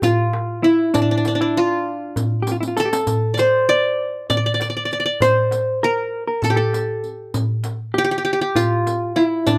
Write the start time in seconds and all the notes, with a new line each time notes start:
Already playing: G4 A4
0.02 F4, riq, darbuka dum
0.33 darbuka tek
0.63 E4, riq, darbuka ka
0.94 D4, riq, darbuka dum
1.02 D4
1.11 D4
1.17 D4
1.25 D4, riq, darbuka tek
1.35 D4
1.41 D4 E4
1.57 F4
2.16 riq, darbuka dum
2.42 G4
2.47 riq, darbuka tek
2.52 F4
2.61 E4, riq
2.68 F4
2.77 A4, riq
2.85 G4
2.93 A4, riq
3.07 riq, darbuka dum
3.34 D5, riq
3.38 C5, darbuka tek
3.69 D5
4.30 D5, riq, darbuka dum
4.37 D5
4.46 D5
4.54 D5
4.60 D5, riq, darbuka tek
4.70 D5
4.77 D5
4.85 D5
4.90 D5, riq, darbuka ka
5.00 D5
5.06 D5
5.20 C5, riq, darbuka dum
5.51 riq, darbuka tek
5.83 A#4
6.28 A#4
6.42 A4, riq, darbuka dum
6.50 G4
6.56 A4
6.73 riq, darbuka tek
7.04 riq, darbuka ka
7.34 riq, darbuka dum
7.64 riq, darbuka tek
7.94 G4
7.98 G4
8.04 G4
8.11 G4
8.18 G4
8.25 G4
8.33 G4
8.41 G4
8.55 F4, riq, darbuka dum
8.87 riq, darbuka tek
9.16 E4, riq, darbuka ka
9.47 D4, riq, darbuka dum